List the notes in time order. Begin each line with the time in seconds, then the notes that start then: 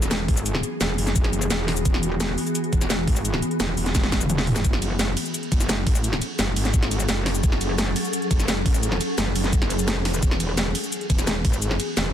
Already playing: E1 E3 B3 F#4 G#4
0.02 snare, shaker
0.11 snare, closed hi-hat, shaker
0.28 G#1, kick, open hi-hat
0.37 shaker
0.46 closed hi-hat, shaker
0.55 snare
0.63 closed hi-hat, shaker
0.81 E1, snare, closed hi-hat, shaker
0.98 F#1, open hi-hat, shaker
1.07 snare, closed hi-hat, shaker
1.16 kick, closed hi-hat, shaker
1.24 snare, closed hi-hat
1.33 closed hi-hat, shaker
1.42 shaker
1.50 E1, snare, closed hi-hat, shaker
1.68 snare, open hi-hat
1.77 shaker
1.85 E1, kick, closed hi-hat, shaker
1.94 snare
2.03 closed hi-hat, shaker
2.20 snare, closed hi-hat, shaker
2.38 open hi-hat, shaker
2.47 closed hi-hat, shaker
2.55 closed hi-hat, shaker
2.64 closed hi-hat
2.73 E1, kick, closed hi-hat, shaker
2.81 snare, shaker
2.90 snare, closed hi-hat, shaker
3.07 G#1, kick, open hi-hat
3.16 shaker
3.25 closed hi-hat, shaker
3.34 snare
3.42 closed hi-hat, shaker
3.51 closed hi-hat
3.60 E1, snare, closed hi-hat, shaker
3.77 E1, open hi-hat, shaker
3.86 snare, closed hi-hat, shaker
3.95 kick, snare, closed hi-hat, shaker
4.03 snare, closed hi-hat
4.12 kick, snare, closed hi-hat, shaker
4.21 mid tom, shaker
4.30 closed hi-hat, mid tom, shaker
4.38 snare
4.47 mid tom, open hi-hat
4.56 snare, shaker
4.64 F#1 F#3 C#4 G#4 A4, kick, closed hi-hat, shaker
4.73 snare
4.82 closed hi-hat, ride bell, shaker
4.99 snare, closed hi-hat, shaker
5.17 open hi-hat, ride bell, shaker
5.26 closed hi-hat, shaker
5.34 closed hi-hat, shaker
5.43 closed hi-hat
5.52 F#1, kick, closed hi-hat, ride bell, shaker
5.60 snare, shaker
5.69 snare, closed hi-hat, shaker
5.87 A1, kick, open hi-hat, ride bell
5.95 shaker
6.04 closed hi-hat, shaker
6.13 snare
6.22 closed hi-hat, ride bell, shaker
6.39 F#1, snare, closed hi-hat, shaker
6.56 G#1, open hi-hat, ride bell, shaker
6.65 snare, shaker
6.74 kick, closed hi-hat, shaker
6.83 snare, closed hi-hat
6.91 closed hi-hat, ride bell, shaker
7.00 shaker
7.09 F#1, snare, closed hi-hat, shaker
7.26 snare, open hi-hat, ride bell
7.35 shaker
7.43 F#1, kick, closed hi-hat, shaker
7.52 snare
7.61 closed hi-hat, ride bell, shaker
7.78 snare, closed hi-hat, shaker
7.96 open hi-hat, ride bell, shaker
8.05 closed hi-hat, shaker
8.13 closed hi-hat, shaker
8.22 closed hi-hat
8.31 F#1, kick, closed hi-hat, ride bell, shaker
8.40 snare, shaker
8.48 snare, closed hi-hat, shaker
8.66 A1, kick, open hi-hat, ride bell
8.74 shaker
8.83 closed hi-hat, shaker
8.92 snare
9.01 closed hi-hat, ride bell, shaker
9.18 F#1, snare, closed hi-hat, shaker
9.35 F#1, open hi-hat, ride bell, shaker
9.44 snare, closed hi-hat, shaker
9.53 kick, closed hi-hat, shaker
9.62 snare, closed hi-hat
9.70 closed hi-hat, ride bell, shaker
9.79 shaker
9.88 snare, closed hi-hat, shaker
9.96 F1
10.05 snare, open hi-hat, ride bell
10.14 shaker
10.22 E1 E3 B3 F#4, kick, closed hi-hat, shaker
10.31 snare
10.40 closed hi-hat, ride bell, shaker
10.57 snare, closed hi-hat, shaker
10.75 open hi-hat, ride bell, shaker
10.84 closed hi-hat, shaker
10.92 closed hi-hat, shaker
11.01 closed hi-hat
11.10 E1, kick, closed hi-hat, ride bell, shaker
11.19 snare, shaker
11.27 snare, closed hi-hat, shaker
11.45 G#1, kick, open hi-hat, ride bell
11.53 shaker
11.62 closed hi-hat, shaker
11.71 snare
11.80 closed hi-hat, ride bell, shaker
11.97 E1, snare, closed hi-hat, shaker